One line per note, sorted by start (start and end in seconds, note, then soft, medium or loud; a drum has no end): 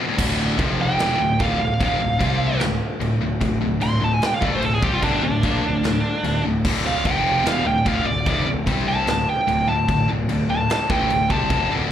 0.00 0.16 D3 medium
0.00 0.16 A3 medium
0.00 0.16 C4 medium
0.00 0.16 F4 medium
0.07 0.16 D2 medium
0.07 0.16 A2 medium
0.17 0.56 D1 loud
0.17 0.58 D2 medium
0.17 0.58 A2 medium
0.17 0.58 D3 loud
0.17 0.59 D3 medium
0.17 0.59 A3 medium
0.17 0.59 D4 medium
0.17 0.59 F4 medium
0.17 kick loud
0.17 crash loud
0.17 china medium
0.58 0.96 F1 medium
0.58 0.98 F2 medium
0.58 0.98 C3 medium
0.58 0.99 F3 medium
0.58 0.99 F3 loud
0.58 0.99 C4 medium
0.58 0.99 G4 medium
0.58 0.99 F5 medium
0.58 kick loud
0.58 china medium
0.82 1.20 G5 loud
0.98 1.19 E1 medium
0.98 1.19 E2 loud
0.98 1.19 B2 loud
0.98 2.20 D3 medium
0.98 1.19 E3 loud
0.98 2.20 A3 medium
0.98 2.59 D4 medium
0.98 2.20 F4 medium
0.98 snare loud
0.98 china medium
1.19 1.39 D1 medium
1.19 1.36 D2 medium
1.19 1.36 A2 medium
1.19 1.41 G5 loud
1.39 1.59 D1 loud
1.39 1.58 D2 loud
1.39 1.59 A2 loud
1.39 1.60 D3 loud
1.39 1.60 F5 loud
1.39 kick loud
1.39 china medium
1.59 1.79 D1 medium
1.59 1.76 D2 medium
1.59 1.76 A2 medium
1.59 1.81 F5 medium
1.80 1.99 F1 loud
1.80 1.98 F2 medium
1.80 1.99 C3 medium
1.80 2.00 F3 medium
1.80 2.60 F5 loud
1.80 kick loud
1.80 china medium
1.99 2.19 D1 medium
1.99 2.16 D2 medium
1.99 2.16 A2 medium
2.19 2.58 C2 loud
2.19 2.59 C3 medium
2.19 2.61 C3 medium
2.19 2.60 G3 loud
2.19 2.61 G3 medium
2.19 2.60 C4 loud
2.19 2.61 C5 medium
2.19 kick loud
2.19 china medium
2.60 2.80 D1 medium
2.60 2.77 D2 medium
2.60 2.77 A2 medium
2.60 7.01 D3 medium
2.60 7.02 A3 medium
2.60 5.01 D4 medium
2.60 7.01 F4 medium
2.60 snare loud
2.60 china medium
3.00 3.19 D1 medium
3.00 3.17 D2 medium
3.00 3.17 A2 medium
3.00 china medium
3.20 3.39 D1 medium
3.20 3.37 D2 medium
3.20 3.38 A2 medium
3.41 3.60 D1 loud
3.41 3.57 D2 medium
3.41 3.58 A2 medium
3.41 kick loud
3.41 china medium
3.61 3.80 D1 medium
3.61 3.78 D2 medium
3.61 3.78 A2 medium
3.80 4.00 D1 medium
3.80 3.98 D2 medium
3.80 3.98 A2 medium
3.80 4.02 C6 loud
3.80 china medium
4.01 4.21 D1 medium
4.01 4.18 D2 medium
4.01 4.18 A2 medium
4.01 4.14 A5 loud
4.14 4.26 G#5 loud
4.22 4.34 G5 loud
4.22 snare loud
4.22 china medium
4.34 4.45 F5 medium
4.41 4.61 A1 loud
4.41 4.61 A2 loud
4.41 4.62 E3 loud
4.41 4.62 A3 loud
4.41 4.55 D5 loud
4.41 kick loud
4.55 4.64 C5 medium
4.62 4.81 D1 medium
4.62 4.78 D2 medium
4.62 4.79 A2 medium
4.62 4.74 A4 medium
4.62 china medium
4.74 4.83 G#4 medium
4.82 5.01 C2 loud
4.82 5.02 C3 medium
4.82 5.02 G3 loud
4.82 5.03 C4 loud
4.82 4.93 G4 loud
4.82 kick loud
4.94 5.03 F4 medium
5.02 5.21 G1 loud
5.02 5.22 G2 medium
5.02 5.22 D3 loud
5.02 5.23 G3 loud
5.02 7.04 C4 medium
5.02 5.22 D4 medium
5.02 kick loud
5.02 china medium
5.21 5.41 D1 medium
5.21 5.40 D2 medium
5.21 5.40 A2 medium
5.21 6.41 D4 loud
5.43 5.62 A#1 loud
5.43 5.63 A#2 loud
5.43 5.63 F3 medium
5.43 5.64 A#3 loud
5.43 kick loud
5.43 china medium
5.63 5.82 D1 medium
5.63 5.80 D2 medium
5.63 5.80 A2 medium
5.83 6.02 D1 medium
5.83 6.00 D2 medium
5.83 6.00 A2 medium
5.83 snare loud
5.83 china medium
6.24 6.43 D1 medium
6.24 6.41 D2 medium
6.24 6.41 A2 medium
6.24 china medium
6.44 6.63 D1 medium
6.44 6.61 D2 medium
6.44 6.61 A2 medium
6.65 7.02 D1 loud
6.65 7.06 D2 medium
6.65 7.06 A2 loud
6.65 7.07 D3 loud
6.65 kick loud
6.65 china medium
6.65 crash loud
6.87 7.06 F5 loud
7.05 7.43 F1 loud
7.05 7.44 F2 medium
7.05 7.45 C3 medium
7.05 7.45 F3 medium
7.05 7.45 F3 loud
7.05 7.45 C4 medium
7.05 7.45 G4 medium
7.05 7.46 F5 medium
7.05 7.45 G5 loud
7.05 kick loud
7.05 china medium
7.45 7.64 E1 medium
7.45 7.65 E2 loud
7.45 7.65 B2 loud
7.45 8.66 D3 medium
7.45 7.66 E3 loud
7.45 8.66 A3 medium
7.45 11.87 D4 medium
7.45 8.66 F4 medium
7.45 7.66 F5 loud
7.45 snare loud
7.45 china medium
7.64 7.84 D1 medium
7.64 7.82 D2 medium
7.64 7.82 A2 medium
7.64 7.86 G5 loud
7.85 8.05 D1 loud
7.85 8.06 D2 loud
7.85 8.06 A2 loud
7.85 8.06 D3 loud
7.85 8.06 F5 loud
7.85 kick loud
7.85 china medium
8.06 8.25 D1 medium
8.06 8.23 D2 medium
8.06 8.23 A2 medium
8.06 8.26 D5 loud
8.26 8.46 F1 loud
8.26 8.46 F2 loud
8.26 8.47 C3 loud
8.26 8.47 F3 loud
8.26 8.48 D5 loud
8.26 kick loud
8.26 china medium
8.47 8.66 D1 medium
8.47 8.63 D2 medium
8.47 8.64 A2 medium
8.66 9.05 C2 medium
8.66 9.06 C3 loud
8.66 9.08 C3 medium
8.66 9.07 G3 medium
8.66 9.08 G3 medium
8.66 9.07 C4 loud
8.66 9.08 C5 medium
8.66 kick loud
8.66 china medium
8.88 9.08 A5 loud
9.07 9.26 D1 medium
9.07 9.23 D2 medium
9.07 9.24 A2 medium
9.07 11.88 D3 medium
9.07 11.88 A3 medium
9.07 11.89 F4 loud
9.07 snare loud
9.07 china medium
9.11 9.29 A5 loud
9.29 9.68 G5 loud
9.47 9.67 D1 medium
9.47 9.64 D2 medium
9.47 9.64 A2 medium
9.47 china medium
9.68 9.87 D1 medium
9.68 9.84 D2 medium
9.68 9.85 A2 medium
9.68 10.08 A5 loud
9.88 10.07 D1 medium
9.88 10.05 D2 medium
9.88 10.05 A2 medium
9.88 kick loud
9.88 china medium
10.08 10.27 D1 medium
10.08 10.25 D2 medium
10.08 10.25 A2 medium
10.28 10.47 D1 medium
10.28 10.45 D2 medium
10.28 10.46 A2 medium
10.28 china medium
10.47 10.67 D1 medium
10.47 10.66 D2 medium
10.47 10.66 A2 medium
10.47 10.70 A5 loud
10.70 10.91 A5 loud
10.70 snare loud
10.70 china medium
10.89 11.08 A1 loud
10.89 11.09 A2 loud
10.89 11.10 E3 loud
10.89 11.10 A3 loud
10.89 11.30 G5 loud
10.89 kick loud
11.08 11.28 D1 medium
11.08 11.26 D2 medium
11.08 11.26 A2 medium
11.08 china medium
11.29 11.49 C2 medium
11.29 11.49 C3 loud
11.29 11.50 G3 loud
11.29 11.50 C4 loud
11.29 11.70 A5 loud
11.29 kick loud
11.50 11.69 F1 loud
11.50 11.70 F2 medium
11.50 11.70 C3 medium
11.50 11.70 F3 loud
11.50 kick loud
11.50 china medium
11.70 11.90 D1 medium
11.70 11.90 D2 medium
11.70 11.90 A2 medium
11.70 11.90 D3 medium